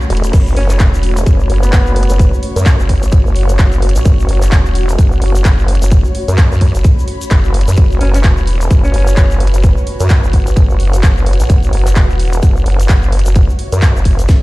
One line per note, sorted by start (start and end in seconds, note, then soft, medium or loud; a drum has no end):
0.00 14.43 A3 medium
0.00 14.43 C#4 medium
0.00 14.43 F#4 medium
0.00 0.32 A4 medium
0.00 14.43 C#5 medium
0.00 1.91 B5 medium
0.00 shaker soft
0.10 0.32 E1 loud
0.10 open hi-hat medium
0.17 closed hi-hat medium
0.24 closed hi-hat medium
0.24 shaker medium
0.33 0.55 F#1 loud
0.33 7.76 C#5 medium
0.33 kick loud
0.33 closed hi-hat medium
0.33 crash medium
0.33 shaker medium
0.47 shaker soft
0.57 0.78 F#1 medium
0.57 0.65 C#4 medium
0.57 open hi-hat loud
0.70 0.76 C#4 medium
0.70 clap soft
0.70 closed hi-hat medium
0.70 shaker medium
0.80 1.25 E1 loud
0.80 kick loud
0.80 clap loud
0.80 closed hi-hat medium
0.80 shaker medium
0.94 shaker soft
1.03 open hi-hat medium
1.17 closed hi-hat medium
1.17 shaker medium
1.26 1.48 F#1 medium
1.26 kick loud
1.26 closed hi-hat medium
1.26 shaker medium
1.39 shaker soft
1.50 1.71 F#1 loud
1.50 open hi-hat loud
1.63 2.28 B3 medium
1.63 closed hi-hat medium
1.63 shaker medium
1.73 2.08 F#1 loud
1.73 kick loud
1.73 clap loud
1.73 closed hi-hat medium
1.73 shaker medium
1.86 5.63 F#5 medium
1.86 shaker soft
1.96 open hi-hat medium
2.03 closed hi-hat medium
2.10 2.31 F#1 medium
2.10 closed hi-hat medium
2.10 shaker medium
2.19 kick loud
2.19 closed hi-hat medium
2.19 shaker medium
2.34 shaker soft
2.43 open hi-hat loud
2.56 2.77 F#2 loud
2.56 closed hi-hat medium
2.56 shaker medium
2.66 kick loud
2.66 clap loud
2.66 closed hi-hat medium
2.66 shaker medium
2.79 3.24 G1 loud
2.79 shaker soft
2.89 kick medium
2.89 open hi-hat loud
3.03 closed hi-hat medium
3.03 shaker medium
3.12 kick loud
3.12 closed hi-hat medium
3.12 shaker medium
3.26 3.57 F#1 loud
3.26 shaker soft
3.36 open hi-hat loud
3.49 closed hi-hat medium
3.49 shaker medium
3.59 3.94 F#1 loud
3.59 kick loud
3.59 clap loud
3.59 closed hi-hat medium
3.59 shaker medium
3.72 shaker soft
3.82 open hi-hat loud
3.89 closed hi-hat medium
3.96 4.04 A1 loud
3.96 closed hi-hat medium
3.96 shaker medium
4.05 4.27 F#1 loud
4.05 kick loud
4.05 closed hi-hat medium
4.05 shaker medium
4.20 shaker soft
4.29 4.50 F#1 loud
4.29 open hi-hat loud
4.42 clap soft
4.42 closed hi-hat medium
4.42 shaker medium
4.52 4.97 E1 loud
4.52 kick loud
4.52 clap loud
4.52 closed hi-hat medium
4.52 shaker medium
4.66 shaker soft
4.75 open hi-hat loud
4.89 closed hi-hat medium
4.89 shaker medium
4.98 5.20 F#1 medium
4.98 kick loud
4.98 closed hi-hat medium
4.98 shaker medium
5.12 shaker soft
5.22 5.43 F#1 medium
5.22 open hi-hat loud
5.35 closed hi-hat medium
5.35 shaker medium
5.45 5.80 F#1 loud
5.45 kick loud
5.45 clap loud
5.45 closed hi-hat medium
5.45 shaker medium
5.59 9.35 B5 medium
5.59 shaker soft
5.68 open hi-hat loud
5.75 closed hi-hat medium
5.82 6.03 F#1 loud
5.82 closed hi-hat medium
5.82 shaker medium
5.91 kick loud
5.91 closed hi-hat medium
5.91 shaker medium
6.05 shaker soft
6.15 open hi-hat loud
6.28 6.49 F#2 medium
6.28 closed hi-hat medium
6.28 shaker medium
6.38 kick loud
6.38 clap loud
6.38 closed hi-hat medium
6.38 shaker medium
6.51 6.73 F#2 medium
6.51 shaker soft
6.61 kick medium
6.61 open hi-hat loud
6.75 6.83 F#1 loud
6.75 closed hi-hat soft
6.75 shaker medium
6.84 kick loud
6.84 closed hi-hat medium
6.84 shaker medium
6.99 shaker soft
7.08 open hi-hat loud
7.21 closed hi-hat soft
7.21 shaker medium
7.31 7.66 F#1 loud
7.31 kick loud
7.31 clap loud
7.31 closed hi-hat medium
7.31 shaker medium
7.44 shaker soft
7.54 open hi-hat loud
7.61 closed hi-hat medium
7.68 7.76 F#2 loud
7.68 closed hi-hat soft
7.68 shaker medium
7.77 7.99 F#1 loud
7.77 14.43 B4 medium
7.77 kick loud
7.77 closed hi-hat medium
7.77 shaker medium
7.91 shaker soft
8.01 8.23 F#1 loud
8.01 8.10 C#4 medium
8.01 open hi-hat loud
8.14 8.21 C#4 medium
8.14 clap soft
8.14 closed hi-hat medium
8.14 shaker medium
8.24 8.69 E1 loud
8.24 kick loud
8.24 clap loud
8.24 closed hi-hat medium
8.24 shaker medium
8.37 shaker soft
8.47 open hi-hat loud
8.61 closed hi-hat soft
8.61 shaker medium
8.71 8.92 F#1 loud
8.71 kick loud
8.71 closed hi-hat medium
8.71 shaker medium
8.84 9.49 C#4 medium
8.84 shaker soft
8.94 9.16 F#1 loud
8.94 open hi-hat loud
9.07 closed hi-hat medium
9.07 shaker medium
9.17 9.52 F#1 loud
9.17 kick loud
9.17 clap loud
9.17 closed hi-hat medium
9.17 shaker medium
9.31 13.08 F#5 medium
9.31 shaker soft
9.40 open hi-hat loud
9.47 closed hi-hat medium
9.54 9.75 F#1 loud
9.54 closed hi-hat medium
9.54 shaker medium
9.63 kick loud
9.63 closed hi-hat medium
9.63 shaker medium
9.77 shaker soft
9.87 open hi-hat loud
10.00 10.22 F#2 loud
10.00 closed hi-hat medium
10.00 shaker medium
10.10 kick loud
10.10 clap loud
10.10 closed hi-hat medium
10.10 shaker medium
10.24 10.68 G1 medium
10.24 shaker soft
10.33 kick medium
10.33 open hi-hat medium
10.47 closed hi-hat medium
10.47 shaker medium
10.56 kick loud
10.56 closed hi-hat medium
10.56 shaker medium
10.70 11.02 F#1 loud
10.70 shaker soft
10.80 open hi-hat loud
10.93 closed hi-hat medium
10.93 shaker medium
11.03 11.38 F#1 loud
11.03 kick loud
11.03 clap loud
11.03 closed hi-hat medium
11.03 shaker medium
11.17 shaker soft
11.26 open hi-hat medium
11.33 closed hi-hat medium
11.40 11.48 A1 loud
11.40 closed hi-hat medium
11.40 shaker medium
11.49 11.71 F#1 loud
11.49 kick loud
11.49 closed hi-hat medium
11.49 shaker medium
11.63 shaker soft
11.73 11.95 F#1 medium
11.73 open hi-hat loud
11.87 clap soft
11.87 closed hi-hat medium
11.87 shaker medium
11.96 12.41 E1 loud
11.96 kick loud
11.96 clap loud
11.96 closed hi-hat medium
11.96 shaker medium
12.10 shaker soft
12.19 open hi-hat medium
12.33 closed hi-hat medium
12.33 shaker medium
12.43 12.64 F#1 medium
12.43 kick loud
12.43 closed hi-hat medium
12.43 shaker medium
12.56 shaker soft
12.66 12.88 F#1 loud
12.66 open hi-hat loud
12.80 closed hi-hat medium
12.80 shaker medium
12.89 13.24 F#1 loud
12.89 kick loud
12.89 clap loud
12.89 closed hi-hat medium
12.89 shaker medium
13.03 14.43 E5 medium
13.03 shaker soft
13.12 open hi-hat medium
13.19 closed hi-hat medium
13.26 13.47 F#1 loud
13.26 closed hi-hat medium
13.26 shaker medium
13.36 kick loud
13.36 closed hi-hat medium
13.36 shaker medium
13.50 shaker soft
13.59 open hi-hat loud
13.72 13.94 F#2 loud
13.72 closed hi-hat medium
13.72 shaker medium
13.82 kick loud
13.82 clap loud
13.82 closed hi-hat medium
13.82 shaker medium
13.96 14.27 F#1 loud
13.96 shaker soft
14.05 kick medium
14.05 open hi-hat loud
14.19 closed hi-hat medium
14.19 shaker medium
14.29 kick loud
14.29 snare medium
14.29 closed hi-hat medium
14.29 shaker medium